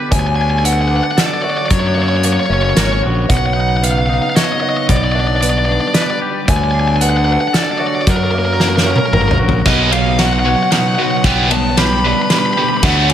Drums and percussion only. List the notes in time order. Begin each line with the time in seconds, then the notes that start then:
0.12 kick, closed hi-hat
0.65 closed hi-hat
1.18 snare, closed hi-hat
1.70 kick, closed hi-hat
2.23 closed hi-hat
2.77 snare, closed hi-hat
3.30 kick, closed hi-hat
3.84 closed hi-hat
4.36 snare, closed hi-hat
4.89 kick, closed hi-hat
5.42 closed hi-hat
5.94 snare, closed hi-hat
6.48 kick, closed hi-hat
7.01 closed hi-hat
7.54 snare, closed hi-hat
8.07 kick, closed hi-hat
8.60 snare
8.77 snare
8.96 high tom
9.13 mid tom
9.31 mid tom
9.49 floor tom
9.66 kick, snare, crash
9.92 ride
10.19 snare, ride
10.72 snare, ride
11.24 kick, snare, ride
11.51 ride
11.77 snare, ride
12.30 snare, ride
12.83 kick, snare, crash
13.10 ride